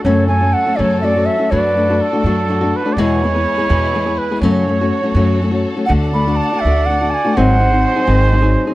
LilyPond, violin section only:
\new Staff \with { instrumentName = "Violin section" } { \time 6/8 \key fis \minor \tempo 4. = 82 << { <cis' a'>2. | <d' a'>2. | <e' b'>2. | <fis' cis''>2. |
<d' fis''>2. | <gis bis'>2. | } \\ { fis'2.~ | fis'2. | gis'2. | a'2.~ |
a'2. | fis'2. | } >> }